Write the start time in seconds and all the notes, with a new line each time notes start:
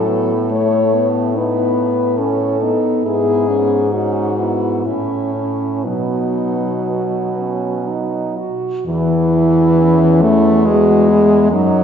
Already playing: A2 F#3 C#4 A4
0.09 B3
0.51 A3 C#5
0.94 B3
1.36 B3 D#4 B4
2.18 C#4 A4
2.62 B3 D#4
3.05 G#2 B3 E4 G#4
3.49 B3 C#4
3.92 C#4 D#4 F#4
4.37 B3 E4
4.85 A2 C#4 E4
5.34 C#4
5.84 B2 F#3 B3 D#4
6.87 B3
7.37 C#4
7.87 D#4
8.38 F#4
8.86 E2 E3 E4
9.77 C#4
10.22 A3
10.66 G#3 B3 F#4
11.09 E4
11.52 F#2 F#3 D#4